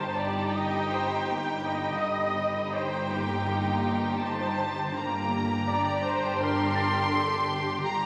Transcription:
0.00 1.97 G1 medium
0.00 1.98 G1 soft
0.00 1.98 G2 soft
0.00 1.97 D#4 medium
0.00 1.98 G4 medium
0.00 0.17 C5 soft
0.00 4.53 G5 soft
0.00 0.52 A5 medium
0.00 3.37 B5 soft
0.00 0.85 F#6 soft
0.17 0.54 D5 soft
0.53 0.91 D#5 medium
0.53 2.01 G5 medium
0.92 1.29 C5 soft
0.92 3.09 G5 soft
1.29 1.66 A#3 soft
1.66 2.75 D#5 medium
2.01 4.90 G1 medium
2.01 4.90 G2 medium
2.01 4.90 D#4 medium
2.01 4.90 G4 medium
2.01 2.74 D#5 medium
2.75 3.12 C5 soft
2.75 4.19 G5 medium
3.13 4.22 A#3 soft
3.37 4.54 C6 soft
4.22 4.95 C5 medium
4.22 4.95 A5 medium
4.95 7.81 G1 medium
4.95 7.81 G2 medium
4.95 5.67 A#3 medium
4.95 7.81 D4 medium
4.95 7.81 G4 medium
4.95 8.06 G5 soft
4.95 6.40 A#5 medium
4.95 8.06 D6 soft
5.67 6.03 D5 medium
6.05 6.40 C5 medium
6.41 7.13 A#4 medium
6.41 7.82 C6 medium
6.76 8.06 A6 medium
7.13 7.49 A4 medium
7.50 8.06 G4 medium
7.85 8.06 G1 medium
7.85 8.06 G2 medium
7.85 8.06 D4 medium
7.85 8.06 G4 medium
7.85 8.06 A#5 medium

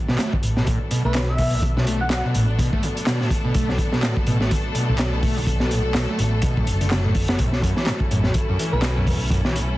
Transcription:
0.00 9.78 F#3 medium
0.00 9.78 A3 medium
0.00 7.35 B3 medium
0.00 7.35 D4 medium
0.00 9.78 A4 medium
0.08 0.17 B2 loud
0.08 snare soft
0.19 0.34 A3 medium
0.19 snare loud
0.19 clap loud
0.19 closed hi-hat medium
0.32 0.36 A2 loud
0.32 kick medium
0.43 0.63 A1 medium
0.43 closed hi-hat medium
0.57 0.69 B2 medium
0.57 snare soft
0.67 0.78 A2 medium
0.67 kick loud
0.67 closed hi-hat medium
0.91 1.02 B2 loud
0.91 closed hi-hat medium
1.04 2.21 B1 medium
1.04 1.17 A3 medium
1.04 1.20 B4 medium
1.14 1.20 A2 loud
1.14 snare loud
1.14 clap loud
1.14 closed hi-hat medium
1.29 1.63 E5 loud
1.38 1.54 B2 medium
1.38 kick loud
1.38 open hi-hat medium
1.53 1.61 A2 medium
1.62 kick loud
1.62 closed hi-hat medium
1.77 1.85 B2 loud
1.77 snare medium
1.87 2.02 A3 medium
1.87 closed hi-hat medium
2.00 2.04 A2 loud
2.00 2.07 F#5 medium
2.10 2.20 F#5 medium
2.10 snare loud
2.10 clap loud
2.10 closed hi-hat medium
2.25 2.37 B2 medium
2.34 2.55 A1 medium
2.34 2.46 A2 medium
2.34 closed hi-hat medium
2.59 2.70 B2 loud
2.59 kick loud
2.59 closed hi-hat medium
2.73 2.84 A3 medium
2.73 kick medium
2.83 2.87 A2 loud
2.83 closed hi-hat medium
2.97 closed hi-hat soft
3.07 3.22 B2 medium
3.07 snare loud
3.07 clap loud
3.07 closed hi-hat medium
3.20 3.29 A2 medium
3.20 snare soft
3.31 kick loud
3.31 closed hi-hat medium
3.45 3.53 B2 loud
3.54 3.75 B1 loud
3.54 3.70 A3 medium
3.54 kick loud
3.54 closed hi-hat medium
3.69 3.72 A2 loud
3.69 snare soft
3.78 kick medium
3.78 closed hi-hat medium
3.92 4.04 B2 medium
3.92 snare medium
4.03 4.14 A2 medium
4.03 snare loud
4.03 clap loud
4.03 closed hi-hat medium
4.17 kick medium
4.26 4.48 A1 medium
4.26 4.38 B2 loud
4.26 closed hi-hat medium
4.41 4.52 A3 medium
4.41 snare soft
4.51 4.55 A2 loud
4.51 kick loud
4.51 closed hi-hat medium
4.75 4.90 B2 medium
4.75 closed hi-hat medium
4.89 6.05 B1 medium
4.89 4.97 A2 medium
4.98 snare loud
4.98 clap loud
4.98 closed hi-hat medium
5.13 5.21 B2 loud
5.23 5.38 A3 medium
5.23 kick loud
5.23 open hi-hat medium
5.37 5.40 A2 loud
5.47 kick loud
5.47 closed hi-hat medium
5.60 5.73 B2 medium
5.60 snare medium
5.71 5.82 A2 medium
5.71 closed hi-hat medium
5.95 6.06 B2 loud
5.95 snare loud
5.95 clap loud
5.95 closed hi-hat medium
6.09 6.21 A3 medium
6.19 6.40 A1 medium
6.19 6.24 A2 loud
6.19 closed hi-hat medium
6.42 6.59 B2 medium
6.42 kick loud
6.42 closed hi-hat medium
6.57 6.65 A2 medium
6.57 kick medium
6.67 7.36 F#1 loud
6.67 closed hi-hat medium
6.81 6.87 D3 medium
6.81 closed hi-hat soft
6.91 6.99 C#3 medium
6.91 snare loud
6.91 clap loud
6.91 closed hi-hat medium
7.05 7.13 A2 loud
7.15 kick medium
7.15 open hi-hat medium
7.28 7.41 B3 medium
7.28 snare loud
7.28 closed hi-hat medium
7.39 7.60 B1 loud
7.39 7.50 E2 medium
7.39 9.78 C#4 medium
7.39 9.78 E4 medium
7.39 kick loud
7.39 closed hi-hat medium
7.52 snare soft
7.62 7.74 F#2 loud
7.62 kick loud
7.62 closed hi-hat medium
7.77 7.88 E3 medium
7.77 snare soft
7.87 7.91 E2 loud
7.87 snare loud
7.87 clap loud
7.87 closed hi-hat medium
8.00 kick medium
8.11 8.32 A1 medium
8.11 8.26 F#2 medium
8.11 closed hi-hat medium
8.24 8.33 E2 medium
8.24 snare soft
8.34 kick loud
8.34 closed hi-hat medium
8.49 8.57 F#2 loud
8.59 8.75 E3 medium
8.59 closed hi-hat medium
8.72 9.78 B1 medium
8.72 8.76 E2 loud
8.72 8.88 B4 medium
8.82 snare loud
8.82 clap loud
8.82 closed hi-hat medium
8.97 9.09 F#2 medium
9.07 9.18 E2 medium
9.07 kick loud
9.07 open hi-hat medium
9.30 9.42 F#2 loud
9.30 kick loud
9.30 closed hi-hat medium
9.45 9.57 E3 medium
9.45 snare medium
9.55 9.60 E2 loud
9.55 closed hi-hat medium

